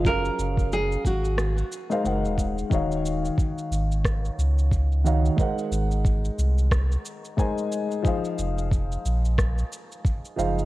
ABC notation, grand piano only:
X:1
M:4/4
L:1/16
Q:"Swing 16ths" 1/4=90
K:Ebdor
V:1 name="Grand piano"
[G,DABf]8 z3 [A,EBcf] [A,EBcg] z3 | [E,EGdf]12- [E,EGdf]2 [E,EGdf]2 | [A,EBcg]12 [A,EBca]4 | [F,EAcf]12- [F,EAcf]2 [F,EAcf]2 |]